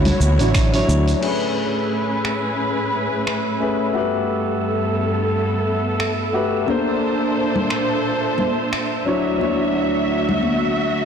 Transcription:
Already playing: fingered electric bass D2, string section D3 E4 F#4 C#5, grand piano F#3 D4 E4 C#5
0.05 open hi-hat, low conga, cabasa
0.20 fingered electric bass D2, high conga, cabasa
0.39 fingered electric bass A1, grand piano F#3 D4 E4 C#5, open hi-hat, cabasa
0.54 finger snap, kick, open hi-hat, cabasa
0.72 grand piano F#3 D4 E4 C#5, open hi-hat, cabasa
0.88 fingered electric bass D2, cabasa
1.08 open hi-hat, cabasa
1.20 string section A2 C#4 G#4 B4, grand piano A3 C#4 G#4, synth texture E5 E6, crash
1.25 grand piano B4
2.25 finger snap
3.27 finger snap
3.60 grand piano A3 C#4 G#4 B4
3.93 string section G2 B3 A4, grand piano A3 F#4 G4
3.98 grand piano B4
6.00 finger snap
6.33 grand piano A3 F#4 G4 B4
6.66 string section A#2 D4 A4 C5, grand piano A#3 D4 A4, high conga
6.70 grand piano C5
7.56 low conga
7.70 finger snap
8.38 high conga, low conga
8.73 finger snap
9.05 string section D2 F#4 E5, grand piano F#3 D4 E4 C#5
9.38 grand piano F#3 D4 E4, high conga
9.43 grand piano C#5
10.29 low conga
10.43 high conga

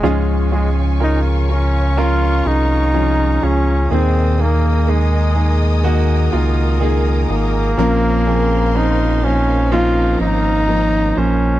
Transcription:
Already playing: flugelhorn G#3
0.02 sub bass C#2, grand piano G#2 C#4 F4 G#4, nylon-string guitar C#3 F3 G#3, string section F4 C#5 G#5 C#6
0.06 nylon-string guitar C#4 F4
0.52 flugelhorn G#3, grand piano C#4 F4 G#4
1.00 grand piano C#4 F4 A#4, flugelhorn D#4
1.49 grand piano C#4 F4 A#4, flugelhorn C#4
1.96 nylon-string guitar F3 G#3 C#4 F4, grand piano C#4 F4 A#4, flugelhorn F4, string section A#5
2.45 sub bass C2, grand piano C#4 F4 G#4, flugelhorn D#4
2.93 nylon-string guitar F3 G#3 C#4 F4, grand piano C#4 F4 G#4
3.42 sub bass C#2, grand piano C#4 F4 G#4, flugelhorn C#4
3.89 sub bass D#2, grand piano A#2 A#3 D#4 G#4, nylon-string guitar D#3 A#3 D#4, flugelhorn C4, string section A#4 D#5 G#5 D#6
3.94 nylon-string guitar G#4
4.39 grand piano A#3 D#4 G#4, flugelhorn A#3
4.87 flugelhorn G#3, grand piano A#3 D#4 G#4
5.35 grand piano A#3 D#4 G#4
5.83 nylon-string guitar D#3 A#3 D#4 G#4, grand piano A#3 D#4 F#4
6.32 sub bass C#2, grand piano A#3 D#4 F4
6.80 nylon-string guitar D#3 A#3 D#4 G#4, grand piano A#3 D#4 G#4
7.29 sub bass G#1, grand piano A#3 D#4 G#4, flugelhorn A#3
7.77 sub bass A#1, nylon-string guitar A#2 F3 C#4, grand piano F3 A#3 C4 C#4 A#4, string section C5 F5 C6
7.82 nylon-string guitar F4
8.26 grand piano F3 A#3 C4 C#4 G#4
8.75 grand piano F3 A#3 C4 C#4 A#4, flugelhorn D#4
9.23 grand piano F3 A#3 C#4 D#4 C5, flugelhorn C#4
9.71 nylon-string guitar F3 C4 C#4 F4, grand piano F3 A#3 C4 C#4 D#4, flugelhorn F4, string section A#5
10.20 sub bass G#1, grand piano F3 A#3 C4 C#4 A#4, flugelhorn D#4
10.68 nylon-string guitar F3 C#4 F4, grand piano F3 A#3 C4 C#4 D#4
11.17 sub bass A#1, grand piano F3 A#3 C#4 C5, flugelhorn C#4

